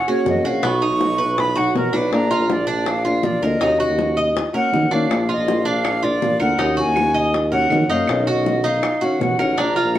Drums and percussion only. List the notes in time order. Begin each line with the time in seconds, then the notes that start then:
0.26 high bongo, low bongo
0.45 high bongo
0.63 high bongo
0.82 high bongo
1.01 high bongo
1.20 high bongo
1.38 high bongo
1.76 high bongo, low bongo
1.94 high bongo
2.13 high bongo
2.31 high bongo
2.50 high bongo
2.68 high bongo
2.86 high bongo
3.23 high bongo, low bongo
3.42 high bongo
3.61 high bongo
3.80 high bongo
3.99 high bongo
4.18 high bongo
4.37 high bongo
4.74 high bongo, low bongo
4.92 high bongo
5.11 high bongo, claves
5.29 high bongo
5.48 high bongo
5.67 high bongo
5.85 high bongo, claves
6.22 high bongo, low bongo
6.40 high bongo, claves
6.59 high bongo
6.78 high bongo
6.96 high bongo, claves
7.16 high bongo
7.34 high bongo
7.70 high bongo, low bongo, claves
7.91 high bongo
8.07 high bongo, claves
8.28 high bongo
8.46 high bongo
8.64 high bongo
8.83 high bongo, claves
9.21 high bongo, low bongo
9.39 high bongo, claves
9.58 high bongo
9.77 high bongo
9.95 high bongo, claves